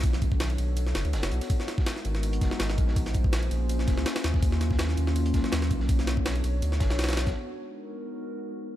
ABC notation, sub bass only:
X:1
M:4/4
L:1/16
Q:"Swing 16ths" 1/4=164
K:G#dor
V:1 name="Sub bass" clef=bass
B,,,6 B,,,4 F,,, =D,, F,,, F,,, B,,, z | z6 G,,,4 F,,, z G,,,2 A,,,2- | A,,,6 A,,,4 E,,, C,, z2 D,,2- | D,,6 D,,4 C,, z D,,2 B,,,2- |
B,,,6 B,,,2 =D,,2 F,,, B,,,4- B,,, | z16 |]